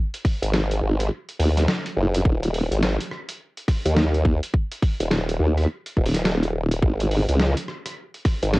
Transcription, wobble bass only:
0.43 G#1
0.82 G#1
1.39 D#2
1.97 F#1
2.25 D#1
2.71 G#1
3.85 D#2
5.00 D#1
5.39 D#2
5.97 D#1
6.82 G#1
7.28 C#2
8.43 G#1

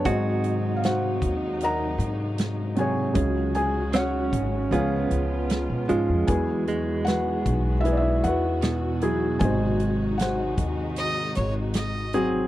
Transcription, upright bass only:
0.05 G#2
1.22 D#2
1.98 G#2
3.16 C#2
4.33 G#1
4.71 C#2
5.11 C#2
5.70 B2
5.90 G#2
6.09 F2
6.29 E2
7.46 B1
8.24 E2
9.41 G#1
10.58 D#2
11.37 G#1

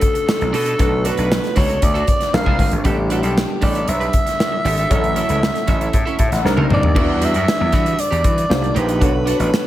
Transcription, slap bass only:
0.41 B1
0.53 B2
0.79 B1
1.18 B1
1.57 C#2
1.82 D2
2.33 A#1
2.46 C2
2.59 G1
2.72 G#1
2.85 A1
3.23 B1
3.62 A1
3.88 B1
4.65 G#1
4.91 A1
5.29 C#2
5.68 A1
5.93 A2
6.19 A2
6.32 A1
6.45 C2
6.57 C2
6.71 A1
6.84 D#2
6.96 E2
7.36 F#2
7.61 E2
7.73 E3
8.12 E2
8.24 E3
8.50 C2
8.76 A#1
9.01 B1
9.39 A1

